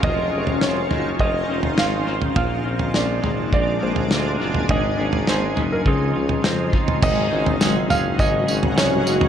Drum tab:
CC |----------------|----------------|----------------|x---------------|
TB |----------------|----------------|----------------|x---x-x-x-x-x-x-|
SD |----o-------o---|----o-------o---|----o-------o---|----o-------o---|
FT |o--o--o----o---o|o--o--o----o---o|o--o--o----o---o|o--o--o----o---o|
BD |o-------o-------|o-------o-------|o-------o-----o-|o-------o-------|